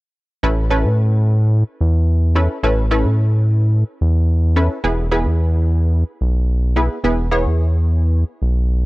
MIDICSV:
0, 0, Header, 1, 3, 480
1, 0, Start_track
1, 0, Key_signature, 3, "major"
1, 0, Tempo, 550459
1, 378, Time_signature, 4, 2, 24, 8
1, 7724, End_track
2, 0, Start_track
2, 0, Title_t, "Synth stab"
2, 0, Program_c, 0, 62
2, 376, Note_on_c, 0, 61, 86
2, 378, Note_on_c, 0, 64, 80
2, 379, Note_on_c, 0, 69, 78
2, 380, Note_on_c, 0, 71, 93
2, 570, Note_off_c, 0, 61, 0
2, 571, Note_off_c, 0, 64, 0
2, 571, Note_off_c, 0, 69, 0
2, 572, Note_off_c, 0, 71, 0
2, 615, Note_on_c, 0, 61, 85
2, 617, Note_on_c, 0, 64, 75
2, 617, Note_on_c, 0, 69, 78
2, 620, Note_on_c, 0, 71, 96
2, 1388, Note_off_c, 0, 61, 0
2, 1389, Note_off_c, 0, 64, 0
2, 1389, Note_off_c, 0, 69, 0
2, 1391, Note_off_c, 0, 71, 0
2, 2055, Note_on_c, 0, 61, 73
2, 2057, Note_on_c, 0, 64, 69
2, 2059, Note_on_c, 0, 69, 68
2, 2060, Note_on_c, 0, 71, 84
2, 2249, Note_off_c, 0, 61, 0
2, 2250, Note_off_c, 0, 64, 0
2, 2251, Note_off_c, 0, 69, 0
2, 2252, Note_off_c, 0, 71, 0
2, 2300, Note_on_c, 0, 61, 83
2, 2300, Note_on_c, 0, 64, 75
2, 2301, Note_on_c, 0, 69, 78
2, 2304, Note_on_c, 0, 71, 96
2, 2492, Note_off_c, 0, 61, 0
2, 2492, Note_off_c, 0, 64, 0
2, 2492, Note_off_c, 0, 69, 0
2, 2494, Note_off_c, 0, 71, 0
2, 2538, Note_on_c, 0, 61, 82
2, 2540, Note_on_c, 0, 64, 79
2, 2542, Note_on_c, 0, 69, 80
2, 2543, Note_on_c, 0, 71, 90
2, 3310, Note_off_c, 0, 61, 0
2, 3311, Note_off_c, 0, 64, 0
2, 3312, Note_off_c, 0, 69, 0
2, 3312, Note_off_c, 0, 71, 0
2, 3976, Note_on_c, 0, 64, 66
2, 3977, Note_on_c, 0, 61, 75
2, 3979, Note_on_c, 0, 69, 70
2, 3981, Note_on_c, 0, 71, 83
2, 4170, Note_off_c, 0, 61, 0
2, 4170, Note_off_c, 0, 64, 0
2, 4171, Note_off_c, 0, 69, 0
2, 4173, Note_off_c, 0, 71, 0
2, 4217, Note_on_c, 0, 59, 88
2, 4218, Note_on_c, 0, 64, 75
2, 4219, Note_on_c, 0, 68, 79
2, 4222, Note_on_c, 0, 71, 91
2, 4410, Note_off_c, 0, 59, 0
2, 4411, Note_off_c, 0, 64, 0
2, 4412, Note_off_c, 0, 68, 0
2, 4413, Note_off_c, 0, 71, 0
2, 4458, Note_on_c, 0, 59, 85
2, 4459, Note_on_c, 0, 64, 77
2, 4461, Note_on_c, 0, 68, 78
2, 4463, Note_on_c, 0, 71, 97
2, 5230, Note_off_c, 0, 59, 0
2, 5230, Note_off_c, 0, 64, 0
2, 5231, Note_off_c, 0, 68, 0
2, 5232, Note_off_c, 0, 71, 0
2, 5896, Note_on_c, 0, 59, 79
2, 5899, Note_on_c, 0, 64, 71
2, 5901, Note_on_c, 0, 68, 70
2, 5902, Note_on_c, 0, 71, 83
2, 6090, Note_off_c, 0, 59, 0
2, 6091, Note_off_c, 0, 64, 0
2, 6092, Note_off_c, 0, 68, 0
2, 6093, Note_off_c, 0, 71, 0
2, 6138, Note_on_c, 0, 59, 88
2, 6141, Note_on_c, 0, 64, 78
2, 6142, Note_on_c, 0, 68, 78
2, 6143, Note_on_c, 0, 71, 93
2, 6331, Note_off_c, 0, 59, 0
2, 6332, Note_off_c, 0, 64, 0
2, 6333, Note_off_c, 0, 68, 0
2, 6334, Note_off_c, 0, 71, 0
2, 6378, Note_on_c, 0, 59, 88
2, 6378, Note_on_c, 0, 64, 78
2, 6381, Note_on_c, 0, 68, 76
2, 6383, Note_on_c, 0, 73, 93
2, 7150, Note_off_c, 0, 59, 0
2, 7150, Note_off_c, 0, 64, 0
2, 7151, Note_off_c, 0, 68, 0
2, 7152, Note_off_c, 0, 73, 0
2, 7724, End_track
3, 0, Start_track
3, 0, Title_t, "Analog synth bass"
3, 0, Program_c, 1, 38
3, 376, Note_on_c, 1, 33, 113
3, 736, Note_on_c, 1, 45, 80
3, 750, Note_off_c, 1, 33, 0
3, 1426, Note_off_c, 1, 45, 0
3, 1575, Note_on_c, 1, 40, 89
3, 2167, Note_off_c, 1, 40, 0
3, 2297, Note_on_c, 1, 33, 117
3, 2656, Note_on_c, 1, 45, 83
3, 2669, Note_off_c, 1, 33, 0
3, 3346, Note_off_c, 1, 45, 0
3, 3497, Note_on_c, 1, 40, 91
3, 4088, Note_off_c, 1, 40, 0
3, 4217, Note_on_c, 1, 28, 115
3, 4575, Note_on_c, 1, 40, 82
3, 4588, Note_off_c, 1, 28, 0
3, 5266, Note_off_c, 1, 40, 0
3, 5415, Note_on_c, 1, 35, 88
3, 6007, Note_off_c, 1, 35, 0
3, 6136, Note_on_c, 1, 28, 111
3, 6496, Note_on_c, 1, 40, 80
3, 6509, Note_off_c, 1, 28, 0
3, 7186, Note_off_c, 1, 40, 0
3, 7339, Note_on_c, 1, 35, 88
3, 7724, Note_off_c, 1, 35, 0
3, 7724, End_track
0, 0, End_of_file